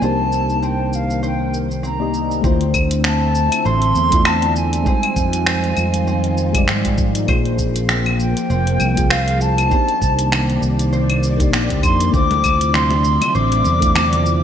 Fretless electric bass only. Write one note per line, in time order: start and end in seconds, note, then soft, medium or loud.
0.02 2.41 C2 medium
2.44 3.48 D2 loud
3.65 3.92 A1 medium
3.95 4.83 E2 medium
5.16 5.74 F2 loud
5.77 6.65 F2 medium
6.68 7.25 G#2 medium
7.28 8.33 A#1 loud
8.50 8.76 F1 medium
8.80 9.68 C2 medium
10.02 10.59 C2 loud
10.62 11.53 C2 medium
11.53 11.84 A#1 medium
11.84 12.10 F2 loud
12.14 13.17 D2 loud
13.35 13.61 A1 loud
13.65 14.43 E2 medium